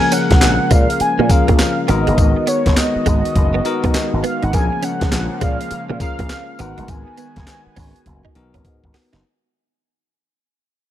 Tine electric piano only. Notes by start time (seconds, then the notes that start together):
Already playing: F3 C#4 G#4 A#4
1.30 C#4 F4 G#4 A#4
1.88 B3 D#4 F#4 A#4
3.65 B3 D#4 F#4 A#4
4.54 F3 C#4 G#4 A#4
6.00 C#4 F4 G#4 A#4
6.59 B3 D#4 F#4 A#4
8.35 B3 D#4 F#4 A#4